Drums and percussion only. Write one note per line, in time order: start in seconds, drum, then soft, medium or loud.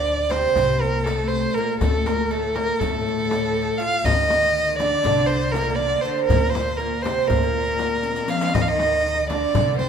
0.07 darbuka ka soft
0.30 riq medium
0.30 darbuka tek medium
0.30 frame drum medium
0.56 riq medium
0.56 frame drum medium
0.56 darbuka dum medium
0.82 riq soft
1.06 riq medium
1.06 darbuka tek medium
1.06 frame drum medium
1.81 riq medium
1.81 frame drum medium
1.81 darbuka dum medium
2.06 riq soft
2.06 darbuka tek medium
2.06 frame drum medium
2.56 darbuka tek medium
2.56 frame drum medium
2.81 riq medium
2.81 frame drum medium
2.81 darbuka dum medium
3.07 riq soft
3.31 riq soft
3.31 darbuka tek medium
3.31 frame drum medium
4.06 riq medium
4.06 darbuka dum medium
4.06 frame drum medium
4.30 riq soft
4.30 darbuka tek medium
4.30 frame drum medium
4.55 darbuka ka soft
4.80 riq soft
4.80 darbuka tek medium
4.80 frame drum medium
5.04 riq medium
5.04 frame drum medium
5.04 darbuka dum medium
5.30 riq soft
5.54 riq soft
5.54 darbuka tek medium
5.54 frame drum medium
6.29 riq medium
6.29 darbuka dum medium
6.29 frame drum medium
6.55 riq medium
6.55 darbuka tek medium
6.55 frame drum medium
6.80 riq soft
6.80 darbuka ka soft
7.05 riq medium
7.05 darbuka tek medium
7.05 frame drum medium
7.30 riq medium
7.30 frame drum medium
7.30 darbuka dum medium
7.54 riq soft
7.79 riq soft
7.79 darbuka tek medium
7.79 frame drum medium
8.03 riq medium
8.03 darbuka ka soft
8.16 riq medium
8.28 riq medium
8.41 riq medium
8.55 riq medium
8.55 darbuka dum medium
8.55 frame drum loud
8.79 riq soft
8.79 darbuka tek medium
8.79 frame drum medium
9.30 riq soft
9.30 darbuka tek medium
9.30 frame drum medium
9.55 riq medium
9.55 darbuka dum medium
9.55 frame drum medium
9.79 riq soft